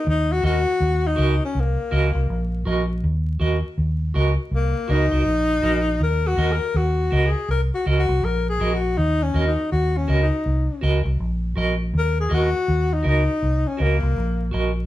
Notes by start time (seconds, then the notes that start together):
0.07 D#2 D#4
0.32 F#4
0.42 D#2 F#4 A#4 D#5
0.80 D#2
1.07 D#4
1.16 C#2 F#4 A#4 D#5
1.45 C#4
1.55 C2
1.60 A#3
1.91 C#2 F#4 A#4 D#5
2.14 C2, muted clean electric guitar stroke
2.30 A#1
2.65 A#1 F#4 A#4 D#5
3.04 D#2
3.40 D#2 F#4 A#4 D#5
3.78 D#2
4.14 C#2 F#4 A#4 D#5
4.51 C2
4.55 A#3
4.88 C#2 F#4 A#4 D#5
4.92 D#4
5.11 C2 F#4 A#4 D#5
5.26 A#1
5.62 A#1 F#4 A#4 D#5
6.01 D#2 A#4
6.27 F#4
6.36 D#2 F#4 A#4 D#5
6.52 A#4
6.74 D#2 F#4
7.11 C#2 F#4 A#4 D#5
7.26 G#4
7.49 C2 A#4
7.75 F#4
7.86 C#2 F#4 A#4 D#5
7.99 F#4
8.08 C2, muted clean electric guitar stroke
8.23 A#1 A#4
8.49 G#4
8.60 A#1 F#4 A#4 D#5
8.74 F#4
8.97 D#2 D#4
9.23 C#4
9.34 D#2 F#4 A#4 D#5
9.47 D#4
9.72 D#2 F#4
9.97 C#4
10.08 C#2 F#4 A#4 D#5
10.22 D#4
10.46 C2
10.81 C#2 F#4 A#4 D#5
11.04 C2, muted clean electric guitar stroke
11.20 A#1
11.55 A#1 F#4 A#4 D#5
11.94 D#2
11.98 A#4
12.21 G#4
12.29 D#2 F#4 A#4 D#5
12.34 F#4
12.68 D#2
12.93 D#4
13.03 C#2 F#4 A#4 D#5
13.08 D#4
13.42 C2
13.67 C#4
13.77 C#2 F#4 A#4 D#5
13.82 A#3
14.01 C2, muted clean electric guitar stroke
14.17 A#1
14.51 A#1 F#4 A#4 D#5